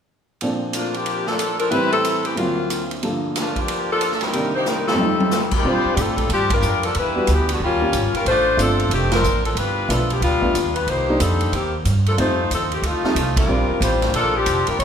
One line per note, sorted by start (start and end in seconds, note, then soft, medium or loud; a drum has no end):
0.41 1.72 A#2 soft
0.41 1.72 F3 soft
0.41 1.71 C4 soft
0.41 1.73 D4 soft
0.41 1.72 A4 soft
0.41 ride soft
0.73 0.94 A3 medium
0.73 0.94 A#3 medium
0.73 0.94 D4 medium
0.73 0.94 F4 medium
0.73 hi-hat pedal soft
0.73 ride medium
0.94 1.26 F3 medium
0.94 1.26 A#3 medium
0.94 1.26 D4 medium
0.94 1.28 G4 medium
0.94 ride soft
1.06 ride soft
1.26 1.58 F3 medium
1.26 1.60 A#3 medium
1.26 1.57 D4 medium
1.26 1.60 A4 medium
1.26 snare soft
1.39 hi-hat pedal medium
1.39 ride medium
1.59 1.71 F3 medium
1.59 1.70 A3 medium
1.59 1.70 D4 medium
1.59 1.71 A#4 medium
1.59 ride soft
1.71 2.37 A2 soft
1.71 2.37 E3 soft
1.71 1.89 G3 medium
1.71 2.37 G3 soft
1.71 1.90 C4 medium
1.71 2.38 C4 soft
1.71 1.90 E4 medium
1.71 1.92 B4 loud
1.71 2.37 B4 soft
1.71 ride soft
1.91 2.22 G3 medium
1.91 2.22 C4 medium
1.91 2.22 E4 medium
1.91 2.22 A4 medium
1.91 ride soft
2.04 hi-hat pedal soft
2.04 ride medium
2.25 2.37 E3 medium
2.25 2.37 A3 medium
2.25 2.37 C4 medium
2.25 2.37 G4 medium
2.25 ride soft
2.35 3.02 D2 soft
2.35 3.02 D3 soft
2.35 2.87 F#3 medium
2.35 3.03 F#3 soft
2.35 2.87 A#3 medium
2.35 3.02 A#3 soft
2.35 2.87 C4 medium
2.35 2.87 F4 medium
2.35 ride soft
2.40 3.04 C4 soft
2.40 3.04 F4 soft
2.70 hi-hat pedal soft
2.70 ride medium
2.91 ride soft
3.03 4.34 G2 soft
3.03 4.34 D3 soft
3.03 4.34 F3 soft
3.03 4.33 A#3 soft
3.03 4.34 A4 medium
3.03 ride soft
3.35 3.57 A#3 medium
3.35 snare soft
3.35 hi-hat pedal medium
3.35 ride medium
3.40 3.57 A3 medium
3.40 3.57 D4 medium
3.40 3.57 F4 medium
3.56 kick soft
3.56 ride soft
3.60 3.91 F3 medium
3.60 3.91 A#3 medium
3.60 3.91 D4 medium
3.60 3.91 G4 medium
3.68 ride medium
3.92 4.13 F3 medium
3.92 4.13 A#3 medium
3.92 4.13 D4 medium
3.92 4.13 A4 medium
4.01 hi-hat pedal soft
4.01 ride medium
4.11 4.23 A4 medium
4.11 snare soft
4.21 4.55 G3 medium
4.21 4.55 C4 medium
4.21 4.55 D#4 medium
4.21 4.55 A#4 medium
4.21 snare soft
4.21 ride soft
4.33 4.99 C2 soft
4.33 4.99 C3 soft
4.33 4.99 D#3 soft
4.33 4.99 A#3 soft
4.33 5.00 D4 soft
4.33 ride medium
4.55 4.66 A#3 medium
4.55 4.66 D#4 medium
4.55 4.66 G4 medium
4.55 4.66 C5 medium
4.66 4.87 G3 medium
4.66 4.87 C4 medium
4.66 4.87 D#4 medium
4.66 4.88 A#4 medium
4.66 snare soft
4.66 hi-hat pedal soft
4.88 5.49 G3 medium
4.88 5.49 C4 medium
4.88 5.49 D#4 medium
4.88 5.49 A4 medium
4.88 snare medium
4.93 5.62 F2 soft
4.93 5.63 F3 soft
4.98 5.62 G3 soft
4.98 5.66 A3 soft
4.98 high tom soft
5.04 5.67 D#4 medium
5.20 high tom medium
5.31 snare medium
5.31 hi-hat pedal medium
5.51 kick medium
5.51 crash medium
5.56 5.65 G3 medium
5.56 5.66 C4 medium
5.56 5.66 D#4 medium
5.56 5.66 A#4 medium
5.64 5.83 A#2 medium
5.64 6.13 G3 medium
5.64 5.93 G3 medium
5.64 6.14 C4 medium
5.64 6.14 D4 soft
5.64 6.14 F4 medium
5.68 5.94 D4 medium
5.68 5.94 F4 medium
5.68 5.94 C5 medium
5.85 muted upright bass stroke soft
5.94 6.29 A2 medium
5.94 5.98 G4 medium
5.94 hi-hat pedal medium
5.94 ride medium
6.01 6.32 G3 medium
6.01 6.31 D4 medium
6.01 6.32 F4 medium
6.01 6.32 A4 medium
6.17 kick soft
6.17 ride soft
6.29 6.61 G2 medium
6.29 6.51 F3 medium
6.29 6.50 C4 medium
6.29 6.51 D4 medium
6.29 6.51 G4 medium
6.29 ride medium
6.50 6.85 G3 medium
6.50 6.84 D4 medium
6.50 6.85 F4 medium
6.50 6.85 A#4 medium
6.50 kick medium
6.50 ride medium
6.62 6.94 F2 medium
6.62 hi-hat pedal medium
6.83 6.96 F3 medium
6.83 6.96 A#3 medium
6.83 6.96 D4 medium
6.83 6.96 A4 medium
6.83 ride soft
6.95 7.27 E2 medium
6.95 7.29 B4 loud
6.95 ride medium
6.99 7.30 G3 medium
6.99 7.30 D4 medium
6.99 7.30 E4 medium
7.15 7.58 G3 medium
7.15 7.58 B3 medium
7.15 7.58 D4 medium
7.15 7.59 F#4 medium
7.27 7.60 D2 medium
7.27 hi-hat pedal medium
7.27 ride medium
7.32 7.51 E3 medium
7.32 7.51 B3 medium
7.32 7.51 D4 medium
7.32 7.51 G4 medium
7.49 ride medium
7.53 7.62 D3 medium
7.53 7.62 G3 medium
7.53 7.62 B3 medium
7.53 7.62 F#4 medium
7.60 7.92 D#2 medium
7.60 8.12 G3 medium
7.60 8.12 A#3 medium
7.60 8.12 C#4 medium
7.60 8.12 F4 medium
7.81 7.92 G3 medium
7.81 7.92 A#3 soft
7.81 7.92 C#4 soft
7.81 7.93 F4 medium
7.93 8.12 G#1 medium
7.93 hi-hat pedal soft
7.93 ride medium
8.13 8.27 G3 medium
8.13 8.27 C#4 medium
8.13 8.27 F4 medium
8.13 8.27 A#4 medium
8.13 muted upright bass stroke soft
8.13 ride soft
8.25 8.57 A1 medium
8.25 8.57 A3 medium
8.25 8.58 D4 medium
8.25 8.57 F4 medium
8.25 8.58 C5 loud
8.25 ride medium
8.57 8.89 G1 medium
8.57 8.90 F3 medium
8.57 9.07 A3 medium
8.57 9.08 C4 soft
8.57 8.90 C4 medium
8.57 9.08 D4 medium
8.57 9.08 F4 medium
8.57 hi-hat pedal medium
8.57 ride medium
8.61 8.91 D4 medium
8.61 8.90 A4 medium
8.80 ride soft
8.90 9.22 F1 medium
8.90 9.12 C4 medium
8.90 ride medium
8.94 9.13 D#3 medium
8.94 9.13 A3 medium
8.94 9.13 G4 medium
9.11 9.43 F3 medium
9.11 9.43 C4 medium
9.11 9.43 D4 medium
9.11 9.43 A#4 medium
9.11 snare medium
9.11 ride medium
9.23 9.54 A1 medium
9.23 hi-hat pedal medium
9.45 9.57 F3 medium
9.45 9.57 C4 medium
9.45 9.57 D4 medium
9.45 9.57 A4 medium
9.45 ride soft
9.55 9.88 G1 medium
9.55 9.90 G3 medium
9.55 9.90 D4 medium
9.55 9.90 F4 medium
9.55 9.90 B4 medium
9.55 ride medium
9.89 10.21 B1 medium
9.89 10.11 F3 medium
9.89 10.08 A3 soft
9.89 10.08 B3 soft
9.89 10.11 B3 medium
9.89 10.08 D4 soft
9.89 10.11 D4 medium
9.89 10.09 F4 medium
9.89 10.11 A4 medium
9.89 hi-hat pedal soft
9.89 ride medium
10.10 10.23 F3 medium
10.10 10.22 B3 medium
10.10 10.23 D4 medium
10.10 10.23 G4 medium
10.10 ride soft
10.21 10.53 D2 medium
10.21 10.72 G3 medium
10.21 10.72 B3 medium
10.21 10.72 D4 medium
10.21 10.73 F4 medium
10.21 ride medium
10.42 10.53 A3 soft
10.42 10.53 B3 soft
10.42 10.54 D4 soft
10.42 10.54 F4 medium
10.42 kick soft
10.54 10.86 D#2 medium
10.54 hi-hat pedal soft
10.54 ride medium
10.76 10.88 G3 medium
10.76 10.87 D4 medium
10.76 10.88 F4 medium
10.76 10.87 B4 medium
10.76 ride soft
10.87 11.19 C2 medium
10.87 11.20 A#3 medium
10.87 11.20 D#4 medium
10.87 11.20 G4 medium
10.87 11.20 C5 medium
10.87 ride soft
11.08 11.50 G3 medium
11.08 11.51 A#3 medium
11.08 11.51 D4 medium
11.08 11.51 D#4 medium
11.20 11.52 F2 medium
11.20 11.53 G3 medium
11.20 11.53 C4 medium
11.20 11.53 D#4 medium
11.20 11.53 A4 medium
11.20 hi-hat pedal medium
11.20 ride medium
11.41 ride soft
11.52 11.84 D#2 medium
11.52 11.74 D#3 medium
11.52 11.74 A#3 medium
11.52 11.74 C4 medium
11.52 11.74 G4 medium
11.52 ride medium
11.85 12.17 G2 medium
11.85 hi-hat pedal medium
11.85 ride medium
12.06 12.18 F3 medium
12.06 12.18 A#3 medium
12.06 12.18 D4 medium
12.06 12.18 A4 medium
12.06 ride soft
12.18 12.49 F2 medium
12.18 12.36 G3 soft
12.18 12.37 A3 soft
12.18 12.49 A3 medium
12.18 12.37 C4 soft
12.18 12.37 D#4 medium
12.18 12.50 D#4 medium
12.18 12.50 F4 medium
12.18 12.50 C5 medium
12.18 ride medium
12.51 12.82 D#2 medium
12.51 12.72 F3 medium
12.51 12.72 C4 medium
12.51 12.72 D#4 medium
12.51 12.72 A4 medium
12.51 hi-hat pedal medium
12.51 ride medium
12.72 12.84 D#3 medium
12.72 12.84 A3 medium
12.72 12.84 C4 medium
12.72 12.84 G4 medium
12.72 ride soft
12.82 13.02 D2 medium
12.82 13.38 D#4 medium
12.82 ride medium
12.86 13.38 A3 medium
12.86 13.38 C4 medium
12.86 13.36 F4 medium
13.03 13.15 G3 soft
13.03 13.15 A3 soft
13.03 13.15 C4 soft
13.03 13.16 D#4 medium
13.03 muted upright bass stroke soft
13.03 snare soft
13.15 13.47 C2 medium
13.15 hi-hat pedal soft
13.15 ride medium
13.37 13.79 G3 medium
13.37 13.79 D4 medium
13.37 13.78 F4 medium
13.37 13.79 A#4 medium
13.37 kick medium
13.37 ride medium
13.48 13.67 A#1 medium
13.48 13.97 G3 medium
13.48 13.98 C4 soft
13.48 13.98 D4 soft
13.48 13.98 F4 medium
13.69 muted upright bass stroke soft
13.80 14.12 A1 medium
13.80 14.12 G3 medium
13.80 14.12 D4 medium
13.80 14.12 F4 medium
13.80 14.12 C5 medium
13.80 hi-hat pedal medium
13.80 ride medium
14.02 snare soft
14.02 ride soft
14.14 14.45 A#1 medium
14.14 14.34 F3 medium
14.14 14.34 A#3 medium
14.14 14.34 D4 medium
14.14 14.34 A4 loud
14.14 ride soft
14.36 14.68 F3 medium
14.36 14.68 C4 medium
14.36 14.68 D4 medium
14.36 14.68 G4 medium
14.46 14.65 F1 medium
14.46 hi-hat pedal medium
14.46 ride medium
14.67 14.80 G3 medium
14.67 14.80 D4 medium
14.67 14.80 F4 medium
14.67 14.80 A#4 medium
14.67 muted upright bass stroke soft
14.67 ride soft
14.79 14.84 A1 medium
14.79 14.84 B3 medium
14.79 14.84 E4 medium
14.79 14.84 G4 medium
14.79 14.84 C#5 loud
14.79 ride medium